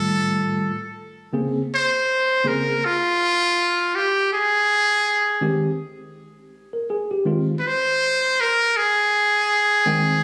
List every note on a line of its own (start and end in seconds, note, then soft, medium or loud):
0.00 0.68 A2 medium
0.00 0.68 D#3 medium
0.00 0.68 G3 medium
0.00 0.68 A3 medium
0.00 0.71 F4 medium
0.00 0.98 A4 loud
1.33 1.61 C#3 medium
1.33 1.61 A#3 medium
1.33 1.61 C4 medium
1.33 1.61 G#4 medium
1.74 2.49 C5 medium
2.44 2.72 C#3 medium
2.44 2.72 A#3 medium
2.44 2.72 C4 medium
2.44 2.73 G#4 medium
2.44 2.87 A#4 medium
2.85 3.97 F4 loud
3.95 4.31 G4 medium
4.33 5.75 G#4 loud
5.41 5.69 D#3 medium
5.41 5.69 G#3 medium
5.41 5.69 C4 medium
5.41 5.69 G4 medium
6.73 6.88 A#4 medium
6.90 7.10 G#4 medium
7.11 7.46 G4 medium
7.26 7.53 D#3 medium
7.26 7.54 G#3 medium
7.26 7.54 C4 medium
7.26 7.54 F4 medium
7.59 7.68 B4 medium
7.67 8.42 C5 loud
8.41 8.78 A#4 loud
8.77 10.23 G#4 medium
9.86 10.23 D#3 medium
9.86 10.23 G#3 medium
9.86 10.23 C4 medium
9.86 10.23 G5 loud